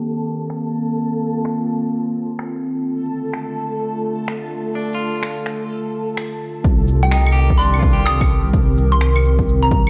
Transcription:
0.00 2.82 D#3 medium
0.00 2.82 A#3 medium
0.00 2.82 C4 medium
0.00 0.95 G4 medium
0.00 6.64 A4 medium
0.00 6.64 A5 medium
0.50 finger snap medium
0.96 2.84 F4 medium
1.45 finger snap medium
2.39 finger snap loud
2.87 6.61 D3 medium
2.87 6.61 A3 medium
2.87 6.61 F4 medium
2.87 6.61 A4 medium
3.33 finger snap loud
4.28 finger snap loud
4.75 5.36 D4 soft
4.95 5.50 F4 soft
5.23 finger snap loud
5.46 finger snap medium
6.17 finger snap loud
6.64 9.90 C2 medium
6.64 9.90 D#3 medium
6.64 9.90 C4 medium
6.64 9.90 G4 medium
6.64 9.90 A#4 medium
6.64 kick loud
6.64 shaker medium
6.88 cabasa medium
6.88 shaker medium
7.03 7.27 G5 medium
7.11 7.73 D#4 medium
7.11 finger snap loud
7.11 shaker medium
7.26 claves medium
7.32 7.87 G4 medium
7.32 cabasa medium
7.50 kick medium
7.50 shaker soft
7.58 8.20 D4 medium
7.58 7.83 C6 medium
7.58 shaker medium
7.74 claves soft
7.79 8.34 F4 medium
7.79 kick loud
7.79 cabasa medium
7.93 8.49 G4 medium
7.97 shaker medium
8.06 8.31 D#6 medium
8.06 finger snap loud
8.06 shaker medium
8.21 kick loud
8.21 claves medium
8.30 cabasa medium
8.54 kick loud
8.54 shaker medium
8.78 cabasa medium
8.78 shaker medium
8.92 9.57 C6 medium
9.01 finger snap loud
9.01 shaker medium
9.16 claves medium
9.25 cabasa medium
9.39 kick medium
9.39 shaker soft
9.49 shaker medium
9.63 9.90 A#5 medium
9.71 kick loud
9.71 cabasa medium

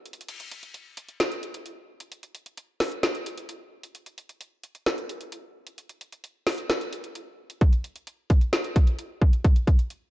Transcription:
0.06 closed hi-hat soft
0.13 closed hi-hat medium
0.21 closed hi-hat medium
0.28 closed hi-hat medium
0.28 crash medium
0.40 closed hi-hat medium
0.51 closed hi-hat medium
0.63 closed hi-hat medium
0.74 closed hi-hat medium
0.97 closed hi-hat medium
1.09 closed hi-hat soft
1.20 snare loud
1.20 closed hi-hat medium
1.32 closed hi-hat soft
1.43 closed hi-hat medium
1.54 closed hi-hat medium
1.66 closed hi-hat medium
2.00 closed hi-hat medium
2.12 closed hi-hat medium
2.23 closed hi-hat medium
2.35 closed hi-hat medium
2.46 closed hi-hat medium
2.57 closed hi-hat medium
2.80 snare medium
2.80 open hi-hat medium
2.92 closed hi-hat soft
3.03 snare loud
3.03 closed hi-hat medium
3.15 closed hi-hat soft
3.26 closed hi-hat medium
3.38 closed hi-hat medium
3.49 closed hi-hat medium
3.83 closed hi-hat medium
3.95 closed hi-hat medium
4.06 closed hi-hat medium
4.18 closed hi-hat medium
4.29 closed hi-hat medium
4.41 closed hi-hat medium
4.63 closed hi-hat medium
4.75 closed hi-hat soft
4.86 snare loud
4.86 closed hi-hat medium
4.98 closed hi-hat soft
5.09 closed hi-hat medium
5.21 closed hi-hat medium
5.32 closed hi-hat medium
5.67 closed hi-hat medium
5.78 closed hi-hat medium
5.89 closed hi-hat medium
6.01 closed hi-hat medium
6.12 closed hi-hat medium
6.24 closed hi-hat medium
6.47 snare medium
6.47 open hi-hat medium
6.58 closed hi-hat soft
6.70 snare loud
6.70 closed hi-hat medium
6.81 closed hi-hat soft
6.93 closed hi-hat medium
7.04 closed hi-hat medium
7.15 closed hi-hat medium
7.50 closed hi-hat medium
7.61 kick loud
7.61 closed hi-hat medium
7.73 closed hi-hat medium
7.84 closed hi-hat medium
7.96 closed hi-hat medium
8.07 closed hi-hat medium
8.30 kick medium
8.30 closed hi-hat medium
8.41 closed hi-hat soft
8.53 snare loud
8.53 closed hi-hat medium
8.64 closed hi-hat soft
8.76 kick loud
8.76 closed hi-hat medium
8.87 closed hi-hat medium
8.99 closed hi-hat medium
9.21 kick loud
9.33 closed hi-hat medium
9.44 kick loud
9.44 closed hi-hat medium
9.56 closed hi-hat medium
9.67 kick medium
9.67 closed hi-hat medium
9.79 closed hi-hat medium
9.90 closed hi-hat medium

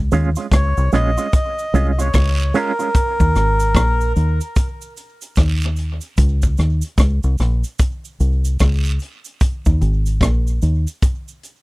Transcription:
0.12 0.35 D#2 medium
0.12 0.28 G#3 medium
0.12 0.29 C#4 medium
0.12 0.29 F4 medium
0.12 closed hi-hat medium
0.12 cabasa medium
0.36 0.46 G#3 soft
0.36 0.45 C#4 soft
0.36 0.45 F4 medium
0.36 closed hi-hat medium
0.36 cabasa medium
0.52 0.75 C#2 medium
0.52 0.91 C#5 loud
0.52 kick loud
0.52 cross-stick loud
0.52 closed hi-hat loud
0.52 cabasa medium
0.77 0.92 C2 medium
0.77 cabasa medium
0.92 1.16 A#1 medium
0.92 1.09 G#3 medium
0.92 1.10 C#4 medium
0.92 1.10 F4 medium
0.92 1.34 D#5 loud
0.92 cross-stick medium
0.92 closed hi-hat medium
0.92 cabasa soft
1.18 1.26 G#3 medium
1.18 1.26 C#4 medium
1.18 1.26 F4 medium
1.18 closed hi-hat medium
1.18 cabasa medium
1.33 1.87 D#5 loud
1.33 kick loud
1.33 closed hi-hat medium
1.33 cabasa medium
1.59 cabasa medium
1.74 2.11 C2 medium
1.74 1.90 G#3 medium
1.74 1.91 C#4 medium
1.74 1.91 F4 medium
1.74 closed hi-hat medium
1.74 cabasa medium
1.91 1.99 D#5 medium
1.99 2.07 G#3 medium
1.99 2.07 C#4 medium
1.99 2.06 F4 medium
1.99 2.57 C#5 medium
1.99 closed hi-hat medium
1.99 cabasa medium
2.14 2.51 C#2 medium
2.14 kick loud
2.14 cross-stick loud
2.14 closed hi-hat medium
2.14 cabasa medium
2.14 long guiro medium
2.39 cabasa medium
2.54 2.71 G#3 medium
2.54 2.71 C#4 medium
2.54 2.72 F4 medium
2.54 4.13 A#4 loud
2.54 closed hi-hat medium
2.54 cabasa soft
2.79 2.88 G#3 medium
2.79 2.88 C#4 medium
2.79 2.87 F4 medium
2.79 closed hi-hat soft
2.79 cabasa medium
2.94 kick loud
2.94 closed hi-hat loud
2.94 cabasa medium
3.20 3.34 D#2 medium
3.20 kick medium
3.20 cabasa medium
3.35 3.73 G#1 medium
3.35 cross-stick medium
3.35 closed hi-hat medium
3.35 cabasa medium
3.60 closed hi-hat medium
3.60 cabasa medium
3.75 4.12 A#1 medium
3.75 kick loud
3.75 cross-stick loud
3.75 closed hi-hat medium
3.75 cabasa medium
4.01 cabasa medium
4.16 4.39 D#2 medium
4.16 closed hi-hat medium
4.16 cabasa medium
4.41 closed hi-hat medium
4.41 cabasa medium
4.56 kick loud
4.56 closed hi-hat medium
4.56 cabasa medium
4.81 cabasa medium
4.97 closed hi-hat medium
4.97 cabasa medium
5.21 closed hi-hat medium
5.21 cabasa medium
5.36 5.99 D#2 medium
5.36 kick loud
5.36 cross-stick medium
5.36 closed hi-hat medium
5.36 cabasa medium
5.36 long guiro medium
5.61 cabasa medium
5.76 closed hi-hat medium
5.76 cabasa soft
6.01 closed hi-hat soft
6.01 cabasa medium
6.17 6.55 C#2 loud
6.17 kick loud
6.17 closed hi-hat loud
6.17 cabasa medium
6.42 kick medium
6.42 cabasa medium
6.57 6.81 D#2 medium
6.57 cross-stick medium
6.57 closed hi-hat medium
6.57 cabasa soft
6.82 closed hi-hat medium
6.82 cabasa medium
6.98 7.21 C#2 medium
6.98 kick loud
6.98 cross-stick loud
6.98 closed hi-hat loud
6.98 cabasa medium
7.23 7.38 C2 medium
7.23 cabasa medium
7.38 7.62 A#1 medium
7.38 cross-stick medium
7.38 closed hi-hat medium
7.38 cabasa medium
7.64 closed hi-hat medium
7.64 cabasa medium
7.79 kick loud
7.79 closed hi-hat medium
7.79 cabasa medium
8.05 cabasa medium
8.20 8.57 C2 medium
8.20 closed hi-hat medium
8.20 cabasa medium
8.45 closed hi-hat medium
8.45 cabasa medium
8.59 8.97 C#2 medium
8.59 kick loud
8.59 cross-stick medium
8.59 closed hi-hat medium
8.59 cabasa medium
8.59 long guiro medium
8.85 cabasa medium
8.99 closed hi-hat medium
8.99 cabasa soft
9.25 closed hi-hat medium
9.25 cabasa medium
9.41 kick loud
9.41 closed hi-hat loud
9.41 cabasa medium
9.66 9.80 D#2 medium
9.66 kick medium
9.66 cabasa medium
9.81 10.18 G#1 loud
9.81 closed hi-hat medium
9.81 cabasa soft
10.06 closed hi-hat medium
10.06 cabasa medium
10.21 10.58 A#1 medium
10.21 kick loud
10.21 cross-stick loud
10.21 closed hi-hat loud
10.21 cabasa medium
10.47 cabasa medium
10.62 10.85 D#2 medium
10.62 closed hi-hat medium
10.62 cabasa medium
10.87 closed hi-hat medium
10.87 cabasa medium
11.02 kick loud
11.02 closed hi-hat medium
11.02 cabasa medium
11.28 cabasa medium
11.43 closed hi-hat medium
11.43 cabasa medium

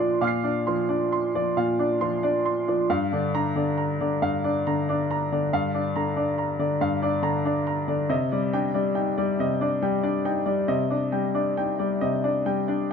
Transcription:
0.00 0.18 A#2 medium
0.00 0.35 F3 soft
0.00 0.24 D4 medium
0.00 0.34 D5 medium
0.00 0.21 F5 medium
0.00 0.24 C6 medium
0.21 1.51 A#2 medium
0.21 0.57 F5 medium
0.21 2.85 D6 soft
0.21 2.86 F6 soft
0.27 2.88 C7 soft
0.44 0.79 D4 soft
0.44 0.79 D5 soft
0.67 1.02 F3 soft
0.67 1.02 C6 soft
0.89 1.24 D4 soft
0.89 1.24 D5 medium
1.12 1.47 C6 medium
1.35 1.70 F3 soft
1.35 1.70 D5 medium
1.57 2.86 A#2 medium
1.57 1.92 F5 medium
1.79 2.14 D4 soft
1.79 2.14 D5 soft
2.01 2.36 F3 soft
2.01 2.36 C6 medium
2.23 2.59 D4 soft
2.23 2.58 D5 medium
2.45 2.81 C6 medium
2.68 2.90 F3 soft
2.68 2.90 D5 soft
2.90 4.19 G2 medium
2.90 3.25 F5 medium
3.13 3.47 D3 medium
3.13 3.47 D5 soft
3.35 3.70 D4 soft
3.35 3.70 A#5 medium
3.56 3.91 D3 soft
3.56 3.91 D5 soft
3.78 4.13 A#5 medium
4.01 4.36 D3 medium
4.01 4.36 D5 medium
4.22 5.48 G2 medium
4.22 4.57 F5 medium
4.44 4.79 D4 soft
4.44 4.79 D5 medium
4.67 5.01 D3 soft
4.67 5.01 A#5 medium
4.89 5.23 D4 medium
4.89 5.23 D5 soft
5.11 5.44 A#5 medium
5.32 5.66 D3 soft
5.32 5.66 D5 soft
5.53 6.78 G2 medium
5.53 5.87 F5 medium
5.74 6.08 D4 soft
5.74 6.08 D5 medium
5.96 6.30 D3 soft
5.96 6.30 A#5 soft
6.16 6.51 D4 soft
6.16 6.51 D5 medium
6.38 6.73 A#5 soft
6.59 6.94 D3 soft
6.59 6.94 D5 medium
6.81 8.07 G2 medium
6.81 7.16 F5 medium
7.02 7.37 D4 soft
7.02 7.37 D5 medium
7.22 7.58 D3 medium
7.22 7.59 A#5 medium
7.45 7.81 D4 medium
7.45 7.81 D5 medium
7.67 8.02 A#5 medium
7.88 8.10 D3 soft
7.88 8.10 D5 soft
8.09 9.34 C3 medium
8.09 8.44 D#5 medium
8.32 8.66 G3 soft
8.32 8.66 D5 medium
8.53 8.87 D4 soft
8.53 8.88 G5 medium
8.74 9.09 G3 soft
8.74 9.08 D5 soft
8.95 9.30 D#4 soft
8.95 9.30 G5 medium
9.18 9.52 G3 medium
9.18 9.52 D5 medium
9.39 10.65 C3 medium
9.39 9.74 D#5 medium
9.61 9.95 D4 soft
9.61 9.95 D5 medium
9.82 10.17 G3 medium
9.82 10.17 G5 medium
10.03 10.38 D4 soft
10.03 10.38 D5 medium
10.25 10.60 D#4 soft
10.25 10.60 G5 medium
10.46 10.82 G3 soft
10.46 10.81 D5 soft
10.68 11.96 C3 medium
10.68 11.04 D#5 medium
10.90 11.26 D4 soft
10.90 11.26 D5 soft
11.12 11.48 G3 soft
11.12 11.48 G5 soft
11.35 11.70 D4 soft
11.35 11.70 D5 soft
11.57 11.92 D#4 soft
11.57 11.92 G5 medium
11.79 12.15 G3 soft
11.79 12.14 D5 soft
12.01 12.93 C3 medium
12.01 12.37 D#5 medium
12.24 12.59 D4 soft
12.24 12.59 D5 medium
12.46 12.81 G3 soft
12.46 12.81 G5 medium
12.68 12.93 D4 soft
12.68 12.93 D5 medium

